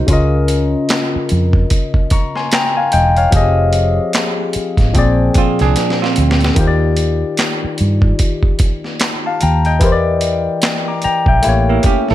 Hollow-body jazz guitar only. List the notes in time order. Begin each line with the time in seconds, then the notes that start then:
5.38 C4 F4
5.62 D4 G#4
6.02 C4 F4
11.69 A#3 E4
11.86 C#4 G4
12.10 E4 A4